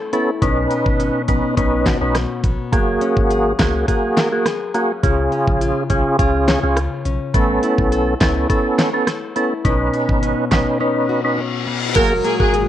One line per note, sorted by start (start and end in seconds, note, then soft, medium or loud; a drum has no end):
0.00 0.42 A3 medium
0.00 0.12 E4 medium
0.00 0.48 A4 medium
0.00 0.74 C#5 medium
0.13 0.31 B3 medium
0.13 0.31 C#4 medium
0.13 0.48 E4 medium
0.13 0.31 A4 medium
0.13 closed hi-hat medium
0.42 0.67 B1 loud
0.42 2.73 B2 medium
0.42 1.22 C#4 medium
0.42 1.22 D#4 medium
0.42 1.22 B4 loud
0.42 kick loud
0.42 closed hi-hat medium
0.71 1.27 B3 medium
0.71 closed hi-hat medium
0.86 1.11 G#1 medium
0.86 kick medium
1.00 1.57 C#4 medium
1.00 closed hi-hat medium
1.28 1.42 A#1 medium
1.28 2.43 B3 medium
1.28 1.55 C#4 medium
1.28 1.55 D#4 medium
1.28 1.55 B4 medium
1.28 kick medium
1.28 closed hi-hat medium
1.57 1.95 B1 loud
1.57 1.98 C#4 medium
1.57 2.15 C#4 medium
1.57 1.98 D#4 medium
1.57 1.98 B4 loud
1.57 kick medium
1.57 closed hi-hat medium
1.86 3.30 F#4 medium
1.86 kick medium
1.86 snare loud
1.86 clap medium
1.86 closed hi-hat medium
2.01 2.26 B1 medium
2.01 2.17 C#4 medium
2.01 2.18 D#4 medium
2.01 2.18 B4 medium
2.15 3.01 C#4 medium
2.15 cross-stick medium
2.15 snare medium
2.15 closed hi-hat medium
2.44 2.57 A#1 loud
2.44 2.79 B3 medium
2.44 kick loud
2.44 closed hi-hat medium
2.72 2.97 F#1 loud
2.72 5.03 F#3 medium
2.72 3.53 A#3 medium
2.72 3.53 F#4 medium
2.72 3.53 G#4 loud
2.72 kick loud
2.72 closed hi-hat medium
3.01 3.59 C#4 medium
3.01 closed hi-hat medium
3.17 3.53 G#1 medium
3.17 kick medium
3.30 3.88 G#4 medium
3.30 closed hi-hat medium
3.59 3.84 C#2 medium
3.59 3.86 A#3 medium
3.59 4.74 C#4 medium
3.59 3.86 F#4 medium
3.59 3.86 G#4 medium
3.59 kick medium
3.59 snare loud
3.59 clap medium
3.59 closed hi-hat medium
3.88 4.28 A#3 medium
3.88 4.29 F#4 medium
3.88 4.45 G#4 medium
3.88 4.29 G#4 medium
3.88 kick medium
3.88 closed hi-hat medium
4.17 5.10 A#4 medium
4.17 snare loud
4.17 clap medium
4.17 closed hi-hat medium
4.32 4.48 A#3 medium
4.32 4.48 F#4 medium
4.32 4.48 G#4 medium
4.46 5.61 G#4 medium
4.46 cross-stick medium
4.46 snare medium
4.46 closed hi-hat medium
4.74 4.92 A#3 medium
4.74 5.32 C#4 medium
4.74 4.92 F#4 medium
4.74 4.92 G#4 medium
4.74 closed hi-hat medium
5.03 5.28 C#2 loud
5.03 7.34 C#3 medium
5.03 5.83 C#4 medium
5.03 5.83 F4 medium
5.03 5.84 G#4 medium
5.03 kick loud
5.03 closed hi-hat medium
5.32 5.90 C#4 medium
5.32 closed hi-hat medium
5.48 5.72 A#1 loud
5.48 kick medium
5.61 6.18 F4 medium
5.61 closed hi-hat medium
5.90 6.03 B1 loud
5.90 6.17 C#4 medium
5.90 7.05 C#4 medium
5.90 6.17 F4 medium
5.90 6.17 G#4 medium
5.90 kick medium
5.90 closed hi-hat medium
6.19 6.57 C#2 loud
6.19 6.59 C#4 medium
6.19 6.59 F4 medium
6.19 6.75 F4 medium
6.19 6.59 G#4 loud
6.19 kick medium
6.19 closed hi-hat medium
6.48 8.78 C#5 medium
6.48 snare loud
6.48 clap medium
6.48 closed hi-hat medium
6.63 6.88 C#2 medium
6.63 6.79 C#4 medium
6.63 6.79 F4 medium
6.63 6.79 G#4 medium
6.76 7.40 F4 medium
6.76 cross-stick medium
6.76 closed hi-hat medium
7.05 7.18 B1 medium
7.05 7.63 C#4 medium
7.05 closed hi-hat medium
7.34 7.59 A1 loud
7.34 9.65 A3 medium
7.34 8.14 B3 medium
7.34 8.14 C#4 medium
7.34 8.14 A4 loud
7.34 kick loud
7.34 closed hi-hat medium
7.63 8.20 E4 medium
7.63 closed hi-hat medium
7.78 8.15 B1 medium
7.78 kick medium
7.92 8.49 A4 medium
7.92 closed hi-hat medium
8.20 8.45 C#2 loud
8.20 8.47 B3 medium
8.20 8.47 C#4 medium
8.20 9.35 E4 medium
8.20 8.48 A4 medium
8.20 kick medium
8.20 snare loud
8.20 clap medium
8.20 closed hi-hat medium
8.49 8.90 B3 medium
8.49 8.90 C#4 medium
8.49 9.06 A4 medium
8.49 8.90 A4 loud
8.49 kick medium
8.49 closed hi-hat medium
8.79 9.97 C#5 medium
8.79 snare loud
8.79 clap medium
8.79 closed hi-hat medium
8.93 9.10 B3 medium
8.93 9.10 C#4 medium
8.93 9.10 A4 medium
9.07 9.71 A4 medium
9.07 cross-stick medium
9.07 snare medium
9.07 closed hi-hat medium
9.36 9.54 B3 medium
9.36 9.54 C#4 medium
9.36 9.71 E4 medium
9.36 9.54 A4 medium
9.36 closed hi-hat medium
9.65 9.90 B1 loud
9.65 11.96 B2 medium
9.65 10.45 C#4 medium
9.65 10.45 D#4 medium
9.65 10.45 B4 medium
9.65 kick loud
9.65 closed hi-hat medium
9.94 10.50 B3 medium
9.94 closed hi-hat medium
10.09 10.34 G#1 medium
10.09 kick medium
10.23 10.80 C#4 medium
10.23 closed hi-hat medium
10.51 10.65 A#1 medium
10.51 11.66 B3 medium
10.51 10.78 C#4 medium
10.51 10.78 D#4 medium
10.51 10.78 B4 medium
10.51 kick medium
10.51 snare loud
10.51 clap medium
10.51 closed hi-hat medium
10.80 11.21 C#4 medium
10.80 11.38 C#4 medium
10.80 11.21 D#4 medium
10.80 11.21 B4 loud
10.80 reverse cymbal medium
11.09 12.53 F#4 medium
11.24 11.40 C#4 medium
11.24 11.41 D#4 medium
11.24 11.41 B4 medium
11.38 12.68 C#4 medium
11.67 12.02 B3 medium
11.95 12.20 F#1 loud
11.95 12.68 A#2 medium
11.95 12.68 F#3 medium
11.95 12.68 G#3 medium
11.95 12.13 A#3 medium
11.95 12.13 F#4 medium
11.95 12.68 F#4 medium
11.95 12.13 G#4 loud
11.95 12.07 A#4 loud
11.95 kick loud
11.95 closed hi-hat medium
11.95 crash loud
12.24 12.68 A#3 medium
12.24 12.35 G#4 medium
12.24 closed hi-hat medium
12.40 12.68 G#1 medium
12.40 12.56 A#3 medium
12.40 12.56 F#4 medium
12.40 12.50 G#4 medium
12.40 12.56 G#4 medium
12.40 kick medium
12.53 12.68 G#4 medium
12.53 closed hi-hat medium